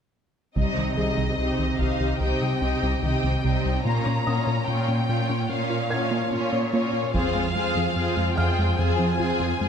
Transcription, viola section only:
0.57 0.97 G3 soft
0.57 0.97 C4 soft
0.98 1.38 G3 soft
0.98 1.38 C4 soft
1.39 1.79 C4 soft
1.39 1.79 G4 soft
1.80 2.20 C4 soft
1.80 2.20 G4 soft
2.21 2.62 C4 soft
2.21 2.61 G4 soft
2.63 3.02 C4 soft
2.63 3.02 G4 soft
3.03 3.43 C4 soft
3.03 3.44 G4 soft
3.44 3.84 G3 soft
3.44 3.85 C4 soft
3.86 4.25 A#3 soft
3.86 4.25 C#4 soft
4.26 4.66 A#3 soft
4.26 4.66 C#4 soft
4.67 5.08 A#3 soft
4.67 5.07 C#4 soft
5.09 5.49 A#3 soft
5.09 5.49 C#4 soft
5.50 5.90 A#3 soft
5.50 5.90 C#4 soft
5.91 6.32 A#3 soft
5.91 6.31 C#4 soft
6.33 6.72 A#3 soft
6.33 6.72 C#4 soft
6.73 7.14 A#3 soft
6.73 7.14 C#4 soft
7.14 7.54 C4 soft
7.14 7.54 F4 soft
7.55 7.95 C4 soft
7.55 7.96 F4 soft
7.97 8.36 C4 soft
7.97 8.36 F4 soft
8.37 8.78 C4 soft
8.37 8.78 F4 soft
8.79 9.18 C4 medium
8.79 9.18 F4 soft
9.19 9.60 C4 soft
9.19 9.60 F4 soft
9.61 9.69 C4 soft
9.61 9.69 F4 soft

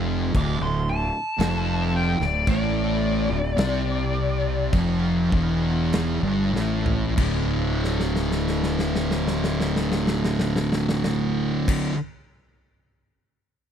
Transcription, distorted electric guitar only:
0.00 0.33 F2 loud
0.34 0.59 D2 loud
0.60 1.02 D2 medium
1.39 2.18 F2 loud
2.20 2.47 D2 medium
2.48 3.29 A2 loud
3.31 3.56 D2 medium
3.57 4.71 C3 loud
4.73 5.31 F2 loud
5.33 6.22 E2 loud
6.23 6.53 G2 loud
6.54 7.16 A2 loud
7.16 11.92 D2 medium
7.16 11.94 A2 loud
7.16 11.94 D3 loud

